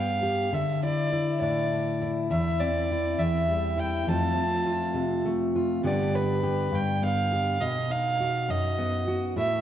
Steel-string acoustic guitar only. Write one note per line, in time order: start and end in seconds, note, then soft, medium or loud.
0.00 0.49 G2 soft
0.00 0.49 B3 soft
0.00 0.50 D4 soft
0.00 0.22 G4 soft
0.23 0.49 G4 medium
0.53 2.30 D3 medium
0.83 1.12 E4 medium
1.13 2.00 E4 medium
1.41 2.30 A2 soft
1.72 2.27 D4 soft
2.02 2.90 E4 medium
2.31 3.17 E2 medium
2.61 4.04 C4 soft
2.91 3.76 E4 medium
3.18 4.07 E2 medium
3.49 4.07 G3 soft
3.78 4.07 E4 medium
4.07 5.81 F2 medium
4.07 5.81 F3 soft
4.07 5.24 A3 soft
4.07 4.35 C4 soft
4.07 4.65 F4 medium
4.36 5.80 C4 soft
4.66 5.55 F4 soft
4.94 5.80 C3 medium
5.25 5.81 A3 soft
5.56 5.81 F4 medium
5.83 6.70 G2 medium
5.83 7.61 D3 soft
5.83 7.01 B3 soft
5.83 6.12 D4 soft
5.83 6.42 G4 medium
6.13 7.57 D4 soft
6.43 7.31 G4 medium
6.72 7.57 G2 medium
7.02 7.57 B3 soft
7.33 7.58 G4 medium
7.61 8.49 B2 medium
7.90 9.34 D#4 soft
8.20 9.06 F#4 medium
8.48 9.34 F#2 medium
8.78 9.34 B3 soft
9.08 9.34 F#4 medium
9.36 9.61 A2 medium